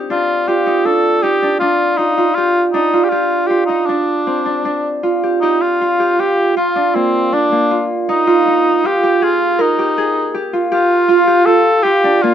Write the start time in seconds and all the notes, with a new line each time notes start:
Already playing: C4 D#4 F4 G4
0.10 D4 F4
0.48 F4 G4
0.66 D#4
0.85 D4 A4
1.23 D#4 G4
1.43 D4
1.59 D4 F4
1.97 D#4 F4
2.18 F4
2.34 F4 G4
2.71 D4 D#4
2.93 F4
3.04 G4
3.09 F4 G4
3.47 F4 G4
3.66 D#4
3.86 D4
4.27 C4
4.46 D4
4.65 D4
5.03 F4
5.23 G4
5.41 D#4 G4
5.61 F4
5.81 F4
6.00 G4
6.19 F4 G4
6.57 F4
6.76 D4
6.95 A#3 C4
7.33 D4
7.52 A#3
7.71 F4
8.09 D#4
8.27 F4
8.47 D#4
8.84 F4 G4
9.03 G4
9.22 F4 G#4
9.59 D#4 A#4
9.79 G4
9.98 G#4
10.34 G4
10.53 F4
10.72 F4 G4
11.09 F4
11.27 G4
11.46 F4 A4
11.83 F4 G4
12.04 D4
12.22 A#3 F4